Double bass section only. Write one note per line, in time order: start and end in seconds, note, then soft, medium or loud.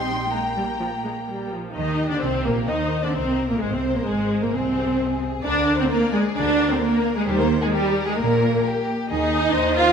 0.00 1.54 A#1 medium
1.75 2.08 D#2 medium
2.22 2.45 C2 medium
2.45 2.68 A#1 medium
2.69 3.02 D#2 medium
3.15 3.49 C2 medium
3.61 3.72 G#1 medium
3.72 3.95 C2 medium
4.07 4.41 G#1 medium
4.53 5.21 C2 medium
5.44 5.82 D2 medium
6.36 6.74 D2 medium
7.27 7.65 D#2 medium
8.18 8.56 A#1 medium
9.09 9.49 D#2 medium
9.54 9.93 D#2 medium